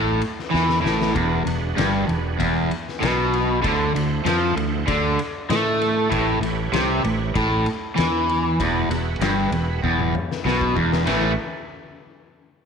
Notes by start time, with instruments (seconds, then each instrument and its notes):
Already playing: fingered electric bass A1, overdriven electric guitar A2
0.22 ride
0.39 snare
0.51 fingered electric bass E2, overdriven electric guitar E3, tonewheel organ E5, snare
0.69 snare
0.82 fingered electric bass A1, overdriven electric guitar A2
0.86 snare
1.01 snare
1.13 fingered electric bass E1, overdriven electric guitar E2, tonewheel organ D4 F#4 G#4, kick, ride
1.17 tonewheel organ B4
1.45 fingered electric bass E1, overdriven electric guitar E2, tonewheel organ D4 F#4 G#4 B4, ride
1.76 fingered electric bass G1, overdriven electric guitar G2, snare, ride
2.07 fingered electric bass E1, overdriven electric guitar E2, ride
2.39 fingered electric bass E1, overdriven electric guitar E2, kick, ride
2.71 ride
2.88 snare
3.00 fingered electric bass B1, overdriven electric guitar B2, snare, ride
3.34 ride
3.62 fingered electric bass D2, overdriven electric guitar D3, tonewheel organ E4 F#4 A4 C5, kick, ride
3.95 fingered electric bass D2, overdriven electric guitar D3, tonewheel organ E4 A4 C5 F#5, ride
4.25 fingered electric bass F2, overdriven electric guitar F3, snare, ride
4.56 fingered electric bass D2, overdriven electric guitar D3, ride
4.87 fingered electric bass D2, overdriven electric guitar D3, kick, ride
5.19 ride
5.49 fingered electric bass A2, overdriven electric guitar A3, snare, ride
5.82 ride
6.10 fingered electric bass A1, overdriven electric guitar A2, tonewheel organ E4 G4 B4 C#5, kick, ride
6.41 fingered electric bass A1, overdriven electric guitar A2, tonewheel organ E4 G4 B4 C#5, ride
6.72 fingered electric bass C2, overdriven electric guitar C3, snare, ride
7.04 fingered electric bass A1, overdriven electric guitar A2, ride
7.35 fingered electric bass A1, overdriven electric guitar A2, kick, ride
7.66 ride
7.96 fingered electric bass E2, overdriven electric guitar E3, snare, ride
8.29 ride
8.60 fingered electric bass E1, overdriven electric guitar E2, tonewheel organ F#4 G#4 B4 D5, kick, ride
8.89 fingered electric bass E1, overdriven electric guitar E2, tonewheel organ F#4 G#4 B4 E5, ride
9.19 fingered electric bass G1, overdriven electric guitar G2, snare, ride
9.51 fingered electric bass E1, overdriven electric guitar E2, ride
9.84 fingered electric bass E1, overdriven electric guitar E2, kick
9.99 high tom
10.15 mid tom
10.32 snare
10.45 fingered electric bass B1, overdriven electric guitar B2, snare
10.61 kick
10.76 fingered electric bass E1, overdriven electric guitar E2, kick
10.93 snare
11.06 fingered electric bass A1, overdriven electric guitar A2 E3 A3, tonewheel organ F#4 G4 B4 C#5, snare, ride bell